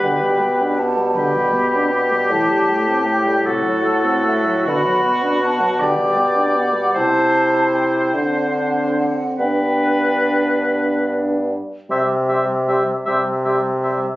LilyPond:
<<
  \new Staff \with { instrumentName = "Flute" } { \time 6/8 \key g \major \tempo 4. = 52 g''4 a''8 b''4 r8 | a''4 g''8 fis''4 e''8 | b''4 a''8 g''4 fis''8 | a''4 g''8 fis''4 fis''8 |
g''4. r4. | \key c \major c'''8 c'''8 c'''8 c'''8 c'''8 c'''8 | }
  \new Staff \with { instrumentName = "Oboe" } { \time 6/8 \key g \major b'4 r8 g'4.~ | g'4. a'4. | fis'4. d''4. | c''2~ c''8 r8 |
b'2~ b'16 r8. | \key c \major e''8 e''8 e''8 e''8 e''8 e''8 | }
  \new Staff \with { instrumentName = "Clarinet" } { \time 6/8 \key g \major g'2~ g'8 r8 | g'4. fis'4.~ | fis'4. g'4. | e'4. d'4. |
d'2~ d'8 r8 | \key c \major g'8 g'8 g'8 g'8 g'8 g'8 | }
  \new Staff \with { instrumentName = "French horn" } { \clef bass \time 6/8 \key g \major d16 g16 b16 d'16 b16 g16 d16 g16 b16 d'16 b16 g16 | e16 g16 a16 c'16 a16 g16 c16 fis16 a16 c'16 a16 fis16 | d16 fis16 b16 d'16 b16 fis16 d16 g16 b16 d'16 b16 g16 | c'4. c'4. |
b2~ b8 r8 | \key c \major g8 g8 g8 g8 g8 g8 | }
  \new Staff \with { instrumentName = "Bassoon" } { \clef bass \time 6/8 \key g \major b,2. | a,2. | b,2. | c4. d4. |
g,2~ g,8 r8 | \key c \major c4. c4. | }
>>